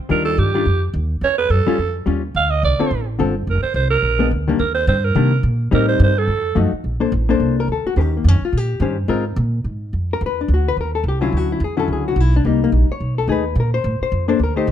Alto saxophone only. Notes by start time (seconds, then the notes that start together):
0.11 A#4
0.25 A4
0.39 G4
1.24 C#5
1.38 B4
1.51 A4
2.36 F5
2.50 D#5
2.65 D5
3.50 A#4
3.63 C5
3.76 C5
3.90 A#4
4.60 A#4
4.74 C5
4.89 C5
5.04 A#4
5.75 A#4
5.88 C5
6.04 C5
6.18 A4